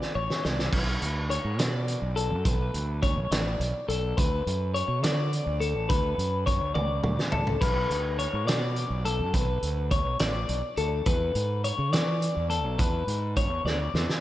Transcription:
0.00 0.15 D5 medium
0.00 snare medium
0.15 0.27 A1 loud
0.15 0.44 C#5 medium
0.30 snare medium
0.44 0.68 C2 medium
0.44 0.72 D5 medium
0.44 snare medium
0.59 snare medium
0.72 0.96 B1 loud
0.72 1.30 B4 medium
0.72 kick medium
0.72 crash loud
1.02 1.37 D2 medium
1.02 closed hi-hat medium
1.30 1.59 C#5 medium
1.30 closed hi-hat medium
1.45 1.58 G#2 medium
1.58 1.94 B2 medium
1.58 2.16 D5 medium
1.58 snare loud
1.58 closed hi-hat medium
1.88 closed hi-hat medium
2.02 2.32 B1 medium
2.16 2.45 A4 medium
2.16 closed hi-hat medium
2.31 2.42 F#2 medium
2.45 2.69 B1 medium
2.45 3.02 B4 medium
2.45 kick loud
2.45 closed hi-hat medium
2.74 3.18 D2 medium
2.74 closed hi-hat medium
3.03 3.31 C#5 medium
3.03 kick medium
3.03 closed hi-hat medium
3.17 3.29 B1 medium
3.31 3.55 A1 medium
3.31 3.88 D5 medium
3.31 snare loud
3.31 closed hi-hat loud
3.60 3.72 B1 loud
3.60 closed hi-hat medium
3.89 4.12 B1 medium
3.89 4.17 A4 medium
3.89 closed hi-hat medium
4.17 4.41 D2 loud
4.17 4.74 B4 medium
4.17 kick loud
4.17 closed hi-hat medium
4.46 4.82 F#2 medium
4.46 closed hi-hat medium
4.74 5.03 C#5 medium
4.74 closed hi-hat medium
4.88 5.03 B2 medium
5.03 5.39 D3 loud
5.03 5.61 D5 medium
5.03 snare loud
5.03 closed hi-hat medium
5.33 closed hi-hat medium
5.46 5.74 D2 medium
5.60 5.89 A4 medium
5.60 closed hi-hat medium
5.74 5.87 A1 medium
5.89 6.13 D2 medium
5.89 6.46 B4 medium
5.89 kick loud
5.89 closed hi-hat medium
6.18 6.61 F#2 medium
6.18 closed hi-hat medium
6.46 6.74 C#5 medium
6.46 kick medium
6.46 closed hi-hat medium
6.61 6.73 D2 medium
6.74 6.99 C#2 medium
6.74 7.32 D5 medium
6.74 high tom medium
7.04 7.16 D2 loud
7.04 mid tom medium
7.19 snare medium
7.32 7.56 C#2 medium
7.32 7.61 A4 medium
7.32 floor tom medium
7.47 floor tom medium
7.61 7.85 B1 loud
7.61 8.18 B4 medium
7.61 kick loud
7.61 closed hi-hat medium
7.61 crash medium
7.90 8.26 D2 medium
7.90 closed hi-hat medium
8.19 8.47 C#5 medium
8.19 closed hi-hat medium
8.33 8.47 G#2 medium
8.47 8.83 B2 loud
8.47 9.05 D5 medium
8.47 snare loud
8.47 closed hi-hat loud
8.76 closed hi-hat medium
8.90 9.21 B1 medium
9.05 9.34 A4 medium
9.05 closed hi-hat medium
9.20 9.31 F#2 medium
9.34 9.58 B1 loud
9.34 9.91 B4 medium
9.34 kick loud
9.34 closed hi-hat medium
9.62 10.06 D2 medium
9.62 closed hi-hat medium
9.91 10.20 C#5 medium
9.91 kick medium
9.91 closed hi-hat medium
10.06 10.18 B1 medium
10.19 10.44 A1 medium
10.19 10.78 D5 medium
10.19 snare loud
10.19 closed hi-hat loud
10.49 10.61 B1 loud
10.49 closed hi-hat medium
10.77 11.01 D2 medium
10.77 11.06 A4 medium
10.77 closed hi-hat medium
11.06 11.30 E2 loud
11.06 11.64 B4 medium
11.06 kick loud
11.06 closed hi-hat medium
11.35 11.71 G#2 medium
11.35 closed hi-hat medium
11.64 11.92 C#5 medium
11.64 closed hi-hat medium
11.79 11.93 C#3 medium
11.93 12.28 E3 medium
11.93 12.49 D5 medium
11.93 snare loud
11.93 closed hi-hat medium
12.22 closed hi-hat medium
12.36 12.64 E2 medium
12.50 12.79 A4 medium
12.50 closed hi-hat medium
12.64 12.76 B1 medium
12.79 13.03 E2 medium
12.79 13.36 B4 medium
12.79 kick loud
12.79 closed hi-hat medium
13.07 13.50 G#2 medium
13.07 closed hi-hat medium
13.37 13.65 C#5 medium
13.37 kick medium
13.37 closed hi-hat medium
13.50 13.62 E2 medium
13.65 13.89 D2 medium
13.65 14.20 D5 medium
13.65 snare medium
13.94 14.06 E2 loud
13.94 snare medium
14.10 snare medium

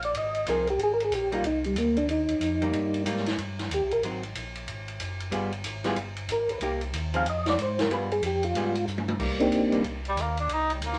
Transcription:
0.00 0.13 A#1 loud
0.00 ride soft
0.05 0.16 D5 loud
0.13 0.46 G#1 medium
0.13 0.46 D#5 loud
0.13 ride medium
0.35 ride soft
0.46 0.78 C2 medium
0.46 0.66 F3 medium
0.46 0.66 C4 medium
0.46 0.66 D#4 medium
0.46 0.67 G#4 medium
0.46 0.68 A#4 medium
0.46 hi-hat pedal medium
0.46 ride medium
0.67 0.81 G4 medium
0.67 ride soft
0.78 1.10 G#1 medium
0.78 ride medium
0.83 0.92 G#4 medium
0.94 1.03 A#4 medium
1.00 ride medium
1.04 1.13 G#4 medium
1.11 1.43 A#1 loud
1.11 hi-hat pedal medium
1.11 ride medium
1.15 1.33 G4 medium
1.32 1.43 G3 medium
1.32 1.43 A#3 medium
1.32 1.43 D#4 medium
1.32 1.45 F4 medium
1.32 ride medium
1.43 1.75 C2 medium
1.43 1.65 D#4 medium
1.43 ride medium
1.64 1.77 G3 medium
1.64 ride soft
1.75 2.07 D2 medium
1.75 1.97 A#3 medium
1.75 hi-hat pedal medium
1.75 ride medium
1.97 2.09 D4 loud
1.97 ride soft
2.08 2.27 D#2 medium
2.08 3.03 D#4 medium
2.08 ride medium
2.28 2.34 D#2 soft
2.28 ride medium
2.40 2.72 F2 medium
2.40 hi-hat pedal medium
2.40 ride medium
2.62 3.04 G3 medium
2.62 3.04 A#3 medium
2.62 3.04 D#4 medium
2.62 ride soft
2.73 3.04 G2 medium
2.73 ride medium
2.94 ride soft
3.05 3.37 G#2 medium
3.05 3.24 G3 medium
3.05 3.24 A#3 medium
3.05 3.24 D#4 medium
3.05 hi-hat pedal medium
3.05 ride medium
3.17 snare soft
3.26 snare soft
3.26 ride soft
3.37 3.69 G2 medium
3.37 ride medium
3.59 snare soft
3.59 ride medium
3.70 3.81 D#2 medium
3.70 3.92 G4 medium
3.70 hi-hat pedal medium
3.70 ride medium
3.81 3.92 C2 medium
3.91 4.02 A#1 medium
3.91 4.03 A#4 medium
3.91 ride soft
4.03 4.34 G#1 medium
4.03 4.22 F#3 medium
4.03 4.22 C4 medium
4.03 4.22 D#4 medium
4.03 ride medium
4.23 ride soft
4.35 4.67 A#1 medium
4.35 hi-hat pedal medium
4.35 ride medium
4.55 ride medium
4.68 4.99 G#1 medium
4.68 ride medium
4.88 ride soft
5.00 5.32 F#1 loud
5.00 hi-hat pedal medium
5.00 ride medium
5.20 ride soft
5.31 5.64 G1 medium
5.31 5.50 G3 medium
5.31 5.50 B3 medium
5.31 5.50 F4 medium
5.31 5.51 G#4 medium
5.31 ride medium
5.52 ride soft
5.64 5.96 G#1 medium
5.64 hi-hat pedal medium
5.64 ride medium
5.84 5.96 G3 medium
5.84 5.96 B3 medium
5.84 5.96 F4 medium
5.84 5.96 G#4 loud
5.84 snare soft
5.84 ride medium
5.96 6.28 G1 medium
5.96 ride medium
6.16 ride medium
6.28 6.47 G#1 loud
6.28 6.50 A#4 medium
6.28 hi-hat pedal medium
6.28 ride medium
6.48 6.55 G#1 soft
6.48 6.58 B4 loud
6.48 ride soft
6.60 6.92 C2 medium
6.60 6.80 A#3 medium
6.60 6.80 D#4 medium
6.60 6.80 G4 medium
6.60 ride medium
6.81 ride soft
6.93 7.25 D#2 loud
6.93 hi-hat pedal medium
6.93 ride medium
7.14 7.25 F3 medium
7.14 7.25 C4 medium
7.14 7.25 D#4 medium
7.14 7.25 G#4 medium
7.14 7.27 F5 loud
7.14 ride medium
7.25 7.57 F2 medium
7.25 ride medium
7.30 7.47 D#5 medium
7.46 7.60 D5 medium
7.46 snare medium
7.46 ride soft
7.58 7.89 G#2 loud
7.58 hi-hat pedal medium
7.58 ride medium
7.62 7.80 C5 medium
7.79 7.91 A#4 medium
7.79 snare medium
7.79 ride medium
7.89 8.21 G2 medium
7.89 8.08 G3 medium
7.89 8.09 B3 medium
7.89 8.09 F4 medium
7.89 8.09 G#4 medium
7.89 ride medium
7.94 8.12 B4 loud
8.11 8.23 G#4 medium
8.11 ride soft
8.22 8.54 F2 medium
8.22 hi-hat pedal medium
8.22 ride medium
8.26 8.44 G4 medium
8.43 8.85 F4 medium
8.43 ride medium
8.54 8.86 G#2 medium
8.54 8.74 G3 medium
8.54 8.74 B3 medium
8.54 8.74 F4 medium
8.54 8.74 G#4 medium
8.54 ride medium
8.75 ride medium
8.86 9.18 G2 loud
8.86 hi-hat pedal medium
8.98 high tom medium
9.08 high tom medium
9.19 9.51 C2 medium
9.19 9.38 G3 medium
9.19 9.38 A#3 medium
9.19 9.38 D#4 medium
9.19 kick medium
9.19 crash medium
9.40 9.82 A#3 medium
9.40 9.82 C4 medium
9.40 9.82 D4 medium
9.40 9.82 D#4 medium
9.40 9.83 G4 medium
9.40 ride soft
9.51 9.83 A#1 medium
9.51 hi-hat pedal medium
9.51 ride medium
9.72 9.83 G3 medium
9.72 9.83 A#3 medium
9.72 9.84 D#4 medium
9.72 ride soft
9.84 10.16 C2 medium
9.84 ride medium
10.05 10.23 G3 medium
10.05 ride soft
10.16 10.48 D#2 loud
10.16 hi-hat pedal medium
10.16 ride medium
10.22 10.39 A#3 medium
10.37 10.55 D4 medium
10.37 ride medium
10.48 10.80 C2 medium
10.48 ride medium
10.53 10.72 D#4 loud
10.70 ride soft
10.74 10.87 G3 soft
10.81 10.99 D2 medium
10.81 hi-hat pedal medium
10.81 ride medium
10.85 10.99 A#3 medium
10.93 snare soft

